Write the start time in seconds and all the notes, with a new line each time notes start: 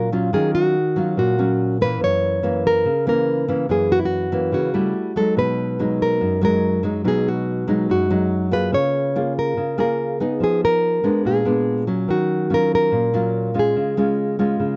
Already playing: A#2
0.12 F#3 C#4 F4
0.33 D#3 F#3 C#4 F4 G#4
0.55 F#4
0.96 F#3 C#4 F4
1.17 A#2 F#4
1.39 F#3 C#4
1.81 E3 A#3 C#4 B4
2.01 F#2 C#5
2.43 E3 A#3 C#4
2.67 A#4
2.85 C#3
3.07 E3 A#3 C#4 A#4
3.48 E3 A#3 C#4
3.69 F#2 E3 A#3 C#4 G#4
3.92 F#4
4.00 E4
4.05 F#4
4.32 E3 A#3 C#4
4.52 C#3 F#4
4.74 G3 A3 E4
5.16 F#3 G#3 D#4 A4
5.37 B2 B4
5.79 F#3 G#3 D#4
6.02 A#4
6.21 F#2
6.41 F#3 G#3 D#4 A#4
6.83 F#3 G#3 D#4
7.04 B2 F#3 G#3 D#4 G#4
7.28 F#4
7.67 F#3 G#3 D#4
7.90 F#2 F#4
8.10 F#3 G#3 D#4
8.51 A#3 F4 G#4 B4
8.72 C#3 C#5
9.16 A#3 F4 G#4
9.39 A#4
9.57 C#3
9.78 A#3 F4 G#4 A#4
10.20 B3 D#4 G#4
10.40 F3 G#4
10.65 A#4
11.04 G#3 B3 D4
11.25 A#2 G#4
11.45 G#3 B3 D4
11.87 F#3 C#4
12.08 D#3 F#4
12.50 F#3 C#4 F4
12.54 A#4
12.75 A#4
12.92 A#2
13.14 F#3 C#4 F4
13.54 G#3 C#4 F4
13.59 G#4
13.76 C#3
13.97 G#3 C#4 F4
14.39 G#3 C#4 F4
14.60 C#3